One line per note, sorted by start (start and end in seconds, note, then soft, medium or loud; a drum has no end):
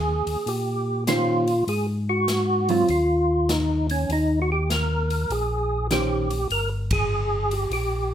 0.00 0.23 D#2 medium
0.00 0.49 G#4 medium
0.26 0.37 D#2 soft
0.26 open hi-hat soft
0.46 1.63 A#2 medium
0.46 1.04 G4 medium
0.46 open hi-hat soft
1.07 1.44 D#3 medium
1.07 1.44 C#4 medium
1.07 1.64 F4 medium
1.07 1.44 G4 medium
1.07 1.44 C5 medium
1.07 snare medium
1.07 closed hi-hat soft
1.48 open hi-hat soft
1.67 2.84 G#2 medium
1.67 1.87 G#4 medium
1.67 open hi-hat soft
2.09 2.71 F#4 loud
2.28 snare medium
2.28 closed hi-hat soft
2.69 2.87 F#3 medium
2.69 2.87 C4 medium
2.69 2.89 F4 medium
2.69 2.88 F4 medium
2.69 open hi-hat soft
2.88 4.05 D#2 medium
2.88 3.52 F4 medium
2.88 open hi-hat soft
3.49 3.87 D#4 medium
3.49 snare medium
3.49 closed hi-hat soft
3.90 4.11 C#4 medium
3.90 open hi-hat soft
4.09 5.26 D#2 medium
4.09 4.40 D#4 medium
4.09 open hi-hat soft
4.42 4.50 F#4 medium
4.52 4.70 G4 medium
4.70 5.33 A#4 medium
4.70 snare medium
4.70 closed hi-hat soft
5.10 open hi-hat soft
5.30 6.47 A#1 medium
5.30 5.87 G#4 medium
5.30 open hi-hat soft
5.91 6.27 D#3 soft
5.91 6.27 C#4 soft
5.91 6.48 G4 medium
5.91 6.28 G4 medium
5.91 6.28 C5 medium
5.91 snare medium
5.91 closed hi-hat soft
6.30 open hi-hat soft
6.50 7.67 G1 medium
6.50 6.70 A#4 medium
6.50 open hi-hat soft
6.91 7.54 G#4 medium
6.91 kick medium
6.91 ride medium
7.51 7.72 G4 medium
7.51 open hi-hat soft
7.70 8.14 A#1 medium
7.70 8.14 G4 medium
7.70 open hi-hat soft